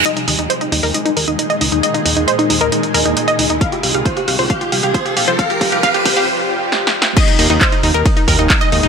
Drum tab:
CC |------------------------------------------------|------------------------------------------------|------------------------------------------------|------------------------------------------------|
RD |------------------------------------------------|------------------------------------------------|------------------------------------------------|------------------------------------------------|
HH |x--x--o--x--x--x--o--o--x--x--o--x--x--x--o--x--|x--x--o--x--x--x--o--x--x--x--o--x--x--x--o--x--|x--x--o--x--x--x--o--o--x--x--o--x--x--x--o--x--|x--x--o--x--x--x--o--o--------------------------|
CP |------------------------------------------------|------------------------------------------------|------------------------------------------------|------------------------------------------------|
SD |------------------------------------------------|------------------------------------------------|------------------------------------------------|------------------------------------o---o---o---|
BD |------------------------------------------------|------------------------------------------------|o-----------o-----------o-----------o-----------|o-----o-----o-----o-----------------------------|

CC |x-----------------------------------------------|
RD |x-----------x-----------x-----------x-----------|
HH |x--x--o--x--x--x--o--x--x--x--o--x--x--x--o--x--|
CP |------------x-----------------------x-----------|
SD |------------------------------------------------|
BD |o-----------o-----------o-----o-----o-----------|